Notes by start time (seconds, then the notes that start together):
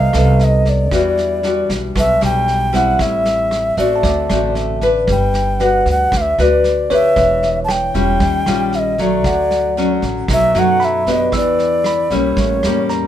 Already playing: C2 C3 D#5 F5
0.13 C2 B3 D#4 A4, cross-stick, snare
0.39 snare
0.43 D#5
0.65 D5, kick, snare
0.91 E2 E3 G3 D4 F#4, kick, cross-stick, snare
1.18 snare
1.43 G3 D4 F#4, snare
1.69 B1, kick, snare
1.95 B1 B2 E5, kick, cross-stick, snare
2.21 B1 G3 D4 G5, snare
2.48 snare
2.73 G3 C4 E4 F#5, kick, snare
2.99 A1 A2 E5, kick, cross-stick, snare
3.25 snare
3.51 cross-stick, snare
3.77 A1 A3 C4 F#4 D5 E5, kick, snare
3.96 A5
4.03 D2 D3 D5, kick, snare
4.30 A1 A3 C4 F#4, cross-stick, snare
4.55 snare
4.81 D4 B4, kick, snare
5.07 G1 G3, kick, cross-stick, snare
5.12 G5
5.34 snare
5.60 D4 F#4 B4 F#5, snare
5.86 D2, kick, snare
5.90 F#5
6.12 D2 D3, kick, cross-stick, snare
6.17 F5
6.21 E5
6.38 D2 D4 F#4 B4 D5, snare
6.64 snare
6.90 D4 G4 B4 C#5 E5, kick, snare
7.16 E1 E3, kick, cross-stick, snare
7.43 snare
7.64 A5
7.68 G5, cross-stick, snare
7.94 E1 G3 C#4 F4, kick, snare
8.20 D#2 D#3, kick, snare
8.46 A#1 G3 C#4 F4, cross-stick, snare
8.72 E5, snare
8.79 D#5
8.98 F#3 A3 D5, kick, snare
9.24 D2 D3 F#5, kick, cross-stick, snare
9.51 snare
9.77 F#3 A3 C#4, snare
10.02 A1, kick, snare
10.28 B1 B2 F#3 A3 D#4, kick, cross-stick, snare
10.33 E5
10.55 F#2 F#3 A3 D#4, snare
10.59 F#5
10.80 B5, snare
10.84 E5
11.07 B3 D4 G4, kick, snare
11.11 D#5
11.32 E2 E3 D5 E6, kick, cross-stick, snare
11.59 snare
11.84 B5, cross-stick, snare
12.10 B1 G3 A#3 C#4 C#5, kick, snare
12.37 A1 A2, kick, snare
12.63 E2 G3 A#3 C#4, cross-stick, snare
12.89 A#5, snare